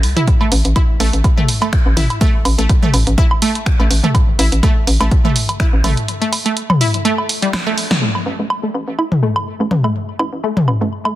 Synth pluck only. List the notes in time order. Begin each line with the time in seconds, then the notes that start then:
0.17 E4
0.41 A3
0.76 E4
1.00 A3
1.37 A3
1.62 A3
1.97 E4
2.21 A3
2.58 A3
2.83 A3
3.18 E4
3.42 A3
3.80 A3
4.04 A3
4.39 E4
4.63 A3
5.00 A3
5.25 A3
5.60 E4
5.84 A3
6.21 A3
6.46 A3
6.81 E4
7.05 A3
7.42 G3
7.67 A3
8.02 A3
8.39 A3
8.63 A3
8.98 E4
9.23 A3
9.60 A3
9.84 A3
10.19 E4
10.44 A3
10.81 A3
11.05 A3